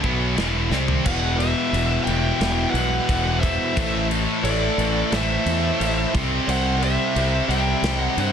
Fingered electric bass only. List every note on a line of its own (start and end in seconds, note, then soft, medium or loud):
0.04 0.35 B1 loud
0.36 0.69 E1 medium
0.71 1.03 C2 loud
1.05 1.53 E1 loud
1.73 1.97 E1 loud
2.06 2.31 E1 medium
2.40 2.65 E1 medium
2.74 2.98 B1 loud
3.09 3.57 E1 medium
3.77 4.25 A1 loud
4.43 4.68 A1 medium
4.78 5.02 A1 loud
5.12 5.36 A1 medium
5.46 5.70 E2 loud
5.80 6.04 A1 medium
6.14 6.38 C2 medium
6.47 6.95 C2 loud
7.16 7.40 C2 loud
7.49 7.73 C2 loud
7.82 8.07 C2 medium
8.17 8.32 G2 medium